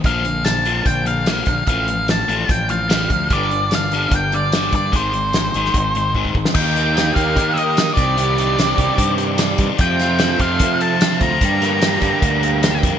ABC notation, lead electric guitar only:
X:1
M:4/4
L:1/8
Q:1/4=148
K:Fmix
V:1 name="Lead electric guitar"
f2 a2 g f3 | f2 a2 g f3 | d2 f2 g d2 d | c6 z2 |
g3 f2 e2 d- | d4- d z3 | g3 f2 a2 b- | b6- b z |]